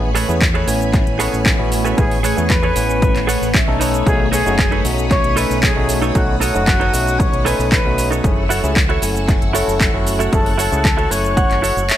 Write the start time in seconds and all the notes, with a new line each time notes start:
Already playing: A1 A3 C#5 G#5 B5
0.15 G#4 A4 B4 C#5, open hi-hat, cabasa
0.28 E2 B3 C#4 E4 G#4, closed hi-hat, cabasa
0.41 kick, clap, closed hi-hat, cabasa
0.54 G#4 A4 B4 C#5, closed hi-hat
0.67 A1 B3 C#4 E4 G#5, open hi-hat, cabasa
0.80 muted clean electric guitar stroke, closed hi-hat, cabasa
0.94 kick, clap, closed hi-hat, cabasa
1.07 A1, closed hi-hat
1.19 A3 B3 C#4 E4 G#4 A4 B4 C#5, open hi-hat, cabasa
1.33 A1, cabasa
1.46 kick, clap, closed hi-hat, cabasa
1.58 A1 B3 C#4 E4 F#4, muted clean electric guitar stroke
1.72 open hi-hat, cabasa
1.84 G#4 A4 B4 C#5, closed hi-hat, cabasa
1.97 A1 B3 C#4 E4 G#4 C#6, kick, closed hi-hat, cabasa
2.11 open hi-hat
2.23 G#4 A4 B4 C#5, open hi-hat, cabasa
2.37 E2 B3 C#4 E4 G#4, closed hi-hat, cabasa
2.50 B4, kick, clap, closed hi-hat, cabasa
2.63 G#4 A4 B4 C#5, closed hi-hat
2.76 A1 B3 C#4 E4 G#5, open hi-hat, cabasa
2.89 muted clean electric guitar stroke, closed hi-hat, cabasa
3.02 kick, closed hi-hat, cabasa
3.15 A1, clap, closed hi-hat
3.27 G#4 A4 B4 C#5 F#5, open hi-hat, cabasa
3.42 A1, cabasa
3.54 E5, kick, clap, closed hi-hat, cabasa
3.67 B1 A3 C#4 D#4 A4, muted clean electric guitar stroke
3.80 D#4 A4 B4 C#5 D#5 B5 D#6, open hi-hat, cabasa
3.94 closed hi-hat, cabasa
4.06 B1 A3 C#4 D#4 F#4 G#4, kick, closed hi-hat, cabasa
4.32 D#4 G#4 A4 B4 C#5, open hi-hat, cabasa
4.46 F#1 A3 C#4 D#4 F#4, closed hi-hat, cabasa
4.59 kick, clap, closed hi-hat, cabasa
4.71 D#4 A4 B4 C#5, closed hi-hat
4.84 B1 A3 C#4 D#4 F#4, open hi-hat, cabasa
4.98 muted clean electric guitar stroke, closed hi-hat, cabasa
5.11 C#5, kick, clap, closed hi-hat, cabasa
5.24 B1, closed hi-hat
5.36 A3 C#4 D#4 A4 B4 C#5 G#5, open hi-hat, cabasa
5.50 B1, cabasa
5.63 G#4, kick, clap, closed hi-hat, cabasa
5.76 B1 A3 C#4 D#4 F#4, muted clean electric guitar stroke
5.89 open hi-hat, cabasa
6.02 D#4 A4 B4 C#5, closed hi-hat, cabasa
6.15 B1 A3 C#4 D#4 F#4, kick, closed hi-hat, cabasa
6.40 D#4 F#4 A4 B4 C#5, open hi-hat, cabasa
6.54 F#1 A3 C#4 D#4 F#4, closed hi-hat, cabasa
6.67 kick, clap, closed hi-hat, cabasa
6.80 D#4 A4 B4 C#5, closed hi-hat
6.93 B1 A3 C#4 D#4 F#4, open hi-hat, cabasa
7.06 muted clean electric guitar stroke, closed hi-hat, cabasa
7.20 C#5, kick, closed hi-hat, cabasa
7.33 B1, closed hi-hat
7.45 A3 C#4 D#4 A4 B4 C#5 G#5, open hi-hat, cabasa
7.59 B1, cabasa
7.72 B4, kick, clap, closed hi-hat, cabasa
7.85 B1 A3 C#4 D#4 F#4, muted clean electric guitar stroke
7.98 open hi-hat, cabasa
8.11 D#4 A4 B4 C#5, closed hi-hat, cabasa
8.24 F#1 A3 C#4 E4 G#4 A4 F#5 C#6 E6, kick, closed hi-hat, cabasa
8.49 E4 F#4 A4 C#5, open hi-hat, cabasa
8.63 C#2 A3 C#4 E4 G#4, closed hi-hat, cabasa
8.76 kick, clap, closed hi-hat, cabasa
8.89 E4 F#4 A4 C#5, closed hi-hat
9.02 F#1 A3 C#4 E4 G#5, open hi-hat, cabasa
9.15 muted clean electric guitar stroke, closed hi-hat, cabasa
9.28 kick, clap, closed hi-hat, cabasa
9.42 F#1, closed hi-hat
9.53 A3 C#4 E4 F#4 A4 C#5, open hi-hat, cabasa
9.68 F#1, cabasa
9.81 kick, clap, closed hi-hat, cabasa
9.93 F#1 A3 C#4 E4 F#4, muted clean electric guitar stroke
10.07 open hi-hat, cabasa
10.19 E4 F#4 A4 C#5, closed hi-hat, cabasa
10.32 F#1 A3 C#4 E4 G#4 A4 F#6, kick, closed hi-hat, cabasa
10.46 open hi-hat
10.57 E4 F#4 A4 C#5, open hi-hat, cabasa
10.72 C#2 A3 C#4 E4 G#4, closed hi-hat, cabasa
10.85 kick, clap, closed hi-hat, cabasa
10.97 E4 F#4 A4 C#5, closed hi-hat
11.10 F#1 A3 C#4 E4 C#5 G#5, open hi-hat, cabasa
11.23 muted clean electric guitar stroke, closed hi-hat, cabasa
11.37 F#5, kick, closed hi-hat, cabasa
11.51 F#1, clap, closed hi-hat
11.62 E4 F#4 A4 C#5 F#5, open hi-hat, cabasa
11.77 F#1, closed hi-hat, cabasa
11.89 E5, clap, closed hi-hat, cabasa